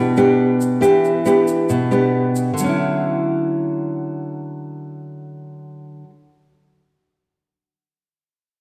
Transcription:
Already playing: nylon-string guitar B2 B3 D4 G4
0.17 nylon-string guitar B3 D4 G4, shaker
0.61 shaker
0.81 nylon-string guitar E3 B3 D4 G4, shaker
1.04 shaker
1.25 nylon-string guitar B3 D4 G4, shaker
1.47 shaker
1.69 nylon-string guitar B2, shaker
1.91 nylon-string guitar B3 D4 G4, shaker
2.36 shaker
2.53 nylon-string guitar D3
2.58 nylon-string guitar F#3, shaker
2.64 nylon-string guitar C#4
2.69 nylon-string guitar E4

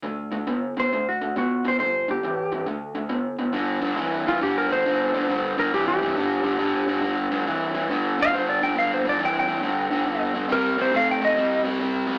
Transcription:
0.03 overdriven electric guitar D3 A3
0.32 overdriven electric guitar D3 A3
0.47 overdriven electric guitar D3 B3
0.77 overdriven electric guitar D3 B3, electric slide guitar C5
0.93 overdriven electric guitar D3 A3
1.09 electric slide guitar F#4
1.22 overdriven electric guitar D3 A3
1.36 overdriven electric guitar D3 B3, electric slide guitar F#4
1.65 overdriven electric guitar D3 B3, electric slide guitar C5
1.79 overdriven electric guitar G2 D3, electric slide guitar C5
2.08 overdriven electric guitar G2 D3, electric slide guitar G4
2.23 overdriven electric guitar G2 E3
2.52 overdriven electric guitar G2 E3
2.66 overdriven electric guitar D3 A3
2.95 overdriven electric guitar D3 A3
3.09 overdriven electric guitar D3 B3
3.39 overdriven electric guitar D3 B3
3.53 overdriven electric guitar G2 D3
3.82 overdriven electric guitar G2 D3
3.96 overdriven electric guitar G2 E3
4.26 overdriven electric guitar G2 E3, electric slide guitar F4
4.41 overdriven electric guitar G2 D3, electric slide guitar G4
4.58 electric slide guitar A#4
4.69 overdriven electric guitar G2 D3, electric slide guitar C5
4.85 overdriven electric guitar G2 D3
5.13 overdriven electric guitar G2 D3
5.29 overdriven electric guitar G2 D3
5.57 overdriven electric guitar G2 D3, electric slide guitar A#4
5.73 overdriven electric guitar G2 E3, electric slide guitar G4
5.88 electric slide guitar G4
6.01 overdriven electric guitar G2 E3
6.16 overdriven electric guitar G2 D3
6.43 overdriven electric guitar G2 D3
6.59 overdriven electric guitar G2 D3
6.88 overdriven electric guitar G2 D3
7.01 overdriven electric guitar G2 D3
7.31 overdriven electric guitar G2 D3
7.46 overdriven electric guitar G2 E3
7.74 overdriven electric guitar G2 E3
7.89 overdriven electric guitar G2 D3
8.18 overdriven electric guitar G2 D3
8.22 electric slide guitar F5
8.33 overdriven electric guitar G2 D3, electric slide guitar C5
8.49 electric slide guitar D5
8.62 overdriven electric guitar G2 D3, electric slide guitar G5
8.76 overdriven electric guitar G2 D3, electric slide guitar F5
8.94 electric slide guitar C5
9.04 overdriven electric guitar G2 D3
9.09 electric slide guitar D5
9.19 overdriven electric guitar G2 E3
9.25 electric slide guitar G5
9.39 electric slide guitar G5
9.47 overdriven electric guitar G2 E3
9.62 overdriven electric guitar G2 D3
9.90 overdriven electric guitar G2 D3
10.06 overdriven electric guitar G2 D3
10.34 overdriven electric guitar G2 D3
10.49 overdriven electric guitar C3 G3, electric slide guitar A#4
10.78 overdriven electric guitar C3 G3, electric slide guitar C5
10.92 overdriven electric guitar C3 A3, electric slide guitar F5
11.11 electric slide guitar G5
11.21 overdriven electric guitar C3 A3, electric slide guitar D#5
11.36 overdriven electric guitar C3 G3
11.64 overdriven electric guitar C3 G3
11.80 overdriven electric guitar C3 G3
12.07 overdriven electric guitar C3 G3

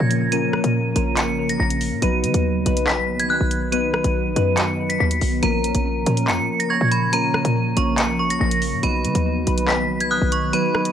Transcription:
Already playing: ambient pad C#3 F3 A#3, synth keys F3 A#3 C#4 A#4, downlifter
0.00 808-style bass A#2
0.11 closed hi-hat
0.31 synth keys F3 A#3 C#4 A#4, synth bell D#7, closed hi-hat
0.53 cross-stick
0.63 808-style bass A#2, synth keys F3 A#3 C#4 A#4, closed hi-hat
0.95 808-style bass A#1, synth keys F3 A#3 C#4 A#4, closed hi-hat
1.17 synth bell C#7, clap, closed hi-hat
1.38 synth keys F3 A#3 C#4 A#4
1.49 synth bell A#6, closed hi-hat
1.60 808-style bass A#1, synth bell A#6
1.70 closed hi-hat
1.81 open hi-hat
1.92 808-style bass A#2
2.02 808-style bass B1, ambient pad D#3 F#3 B3, synth keys F#3 B3 D#4 B4, synth bell D#7, closed hi-hat
2.23 808-style bass D#3, closed hi-hat
2.34 808-style bass D#2, closed hi-hat
2.65 808-style bass B1, synth keys F#3 B3 D#4 B4, closed hi-hat
2.77 closed hi-hat
2.87 synth bell B6, clap
3.20 synth bell G#6, closed hi-hat
3.30 synth bell F#6
3.41 808-style bass B1
3.51 closed hi-hat
3.72 synth keys F#3 B3 D#4 B4, synth bell D#7, closed hi-hat
3.94 cross-stick
4.03 808-style bass B1, synth keys F#3 B3 D#4 B4, closed hi-hat
4.26 808-style bass A#1
4.36 808-style bass F#2, synth keys F#3 B3 D#4 B4, closed hi-hat
4.57 synth bell C#7, clap, closed hi-hat
4.78 synth keys F#3 B3 D#4 B4
4.89 synth bell B6, closed hi-hat
5.00 808-style bass D#2, synth bell B6
5.11 closed hi-hat
5.21 808-style bass B1, open hi-hat
5.42 808-style bass A#1, ambient pad C#3 F3 A#3, synth keys F3 A#3 C#4 A#4, synth bell A#5 D#7, closed hi-hat
5.64 closed hi-hat
5.75 808-style bass A#1, closed hi-hat
6.06 808-style bass A#2, synth keys F3 A#3 C#4 A#4, closed hi-hat
6.17 closed hi-hat
6.28 808-style bass F2, synth bell C#7, clap
6.38 808-style bass A#2
6.60 synth bell A#6, closed hi-hat
6.70 synth bell C#6 G#6
6.81 808-style bass A#2
6.91 synth bell B5, closed hi-hat
7.12 synth keys F3 A#3 C#4 A#4, synth bell A#5 D#7, closed hi-hat
7.34 cross-stick
7.44 808-style bass A#2, synth keys F3 A#3 C#4 A#4, closed hi-hat
7.76 808-style bass A#1, synth keys F3 A#3 C#4 A#4, synth bell C#6, closed hi-hat
7.98 synth bell C#7, clap, closed hi-hat
8.19 synth keys F3 A#3 C#4 A#4, synth bell C#6
8.30 synth bell A#6, closed hi-hat
8.41 808-style bass A#1, synth bell A#6
8.51 closed hi-hat
8.62 open hi-hat
8.72 808-style bass A#2
8.82 808-style bass B1, ambient pad D#3 F#3 B3, synth keys F#3 B3 D#4 B4, synth bell B5 D#7, closed hi-hat
9.04 808-style bass D#3, closed hi-hat
9.15 808-style bass D#2, closed hi-hat
9.46 808-style bass B1, synth keys F#3 B3 D#4 B4, closed hi-hat
9.58 closed hi-hat
9.68 synth bell B6, clap
10.00 synth bell G#6, closed hi-hat
10.11 synth bell D#6 F#6
10.21 808-style bass B1
10.32 synth bell C#6, closed hi-hat
10.53 synth keys F#3 B3 D#4 B4, synth bell B5 D#7, closed hi-hat
10.75 cross-stick
10.84 synth keys F#3 B3 D#4 B4, closed hi-hat

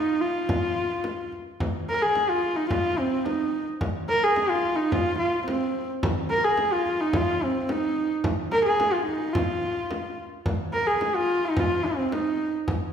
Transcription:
Already playing: horsehead fiddle D#4
0.21 horsehead fiddle F4
0.49 frame drum
0.76 frame drum
1.04 frame drum
1.32 frame drum
1.60 frame drum
1.89 horsehead fiddle A#4
2.02 horsehead fiddle G#4, frame drum
2.15 frame drum
2.30 horsehead fiddle F4
2.43 frame drum
2.56 horsehead fiddle D#4
2.71 horsehead fiddle F4, frame drum
2.99 horsehead fiddle C4
3.12 frame drum
3.25 horsehead fiddle D#4, frame drum
3.81 frame drum
4.09 horsehead fiddle A#4
4.22 horsehead fiddle G#4, frame drum
4.36 frame drum
4.50 horsehead fiddle F4
4.64 frame drum
4.76 horsehead fiddle D#4
4.92 horsehead fiddle F4, frame drum
5.19 horsehead fiddle F4
5.34 frame drum
5.47 horsehead fiddle C4, frame drum
6.03 frame drum
6.30 horsehead fiddle A#4
6.44 horsehead fiddle G#4, frame drum
6.57 frame drum
6.73 horsehead fiddle F4
6.86 frame drum
7.01 horsehead fiddle D#4
7.13 horsehead fiddle F4, frame drum
7.43 horsehead fiddle C4
7.55 frame drum
7.69 horsehead fiddle D#4, frame drum
8.24 frame drum
8.52 horsehead fiddle A#4, frame drum
8.66 horsehead fiddle G#4, frame drum
8.80 frame drum
8.93 horsehead fiddle F4
9.06 horsehead fiddle D#4, frame drum
9.33 horsehead fiddle F4, frame drum
9.77 frame drum
9.91 frame drum
10.46 frame drum
10.73 horsehead fiddle A#4
10.87 horsehead fiddle G#4, frame drum
11.01 frame drum
11.16 horsehead fiddle F4
11.45 horsehead fiddle D#4
11.57 horsehead fiddle F4, frame drum
11.86 horsehead fiddle C4
11.99 frame drum
12.12 horsehead fiddle D#4, frame drum
12.68 frame drum

